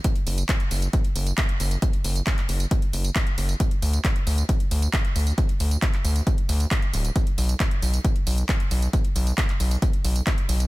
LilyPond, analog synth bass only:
\new Staff \with { instrumentName = "Analog synth bass" } { \clef bass \time 4/4 \key b \dorian \tempo 4 = 135 r8 fis,,8 r8 fis,,8 r8 fis,,8 r8 fis,,8 | r8 fis,,8 r8 fis,,8 r8 fis,,8 r8 fis,,8 | r8 d,8 r8 d,8 r8 d,8 r8 d,8 | r8 d,8 r8 d,8 r8 d,8 r8 d,,8 |
r8 b,,8 r8 b,,8 r8 b,,8 r8 b,,8 | r8 b,,8 r8 b,,8 r8 b,,8 r8 b,,8 | }